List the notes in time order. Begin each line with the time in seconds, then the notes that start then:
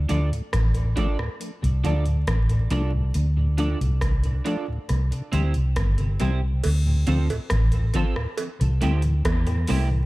0.09 D2 F3 A3 D4 F4 A4 D5, closed hi-hat
0.31 D2 A2, closed hi-hat
0.53 A1, kick, cross-stick, closed hi-hat
0.75 D2 A2, closed hi-hat
0.96 F3 A3 D4 F4 A4 D5, kick, closed hi-hat
1.18 D2 A2, cross-stick
1.41 closed hi-hat
1.63 C2 D2 A2, closed hi-hat
1.84 D2 F3 A3 D4 F4 A4 D5, closed hi-hat
2.06 D2 A2, closed hi-hat
2.27 A1, kick, cross-stick, closed hi-hat
2.49 D2 A2, closed hi-hat
2.70 C2 F3 A3 D4 F4 A4 D5, closed hi-hat
2.93 D2 A2
3.14 D2, closed hi-hat
3.37 D2 A2
3.58 F3 A3 D4 F4 A4 D5, closed hi-hat
3.81 C2 D2 A2, closed hi-hat
4.01 kick, cross-stick, closed hi-hat
4.24 D2 A2, closed hi-hat
4.45 F3 A3 D4 F4 A4 D5, closed hi-hat
4.68 D2 A2
4.89 C2, cross-stick, closed hi-hat
5.12 C3, closed hi-hat
5.32 D2 E3 G3 C4 E4 G4 C5, closed hi-hat
5.54 C2 C3, closed hi-hat
5.76 G1, kick, cross-stick, closed hi-hat
5.98 C3, closed hi-hat
6.20 C2 E3 G3 C4 E4 G4 C5, closed hi-hat
6.43 C3
6.63 D2, closed hi-hat, crash, cowbell
6.86 D2 A2
7.07 D2 D3 F3 C4 F4 A4 C5, closed hi-hat
7.30 D2 A2, closed hi-hat, cowbell
7.50 A1, kick, cross-stick, closed hi-hat
7.72 D2 A2, closed hi-hat
7.94 D3 F3 C4 F4 A4 C5, kick, closed hi-hat
8.16 D2 A2, cross-stick
8.37 closed hi-hat, cowbell
8.61 C2 A2 E3, closed hi-hat
8.81 D2 G3 A3 C4 E4 G4 C5, closed hi-hat
9.02 A2 E3, closed hi-hat
9.25 E2, kick, cross-stick, closed hi-hat, cowbell
9.47 A2 E3, muted clean electric guitar stroke, closed hi-hat
9.67 C2 G3 A3 C4 E4 G4 C5, open hi-hat
9.90 A2 E3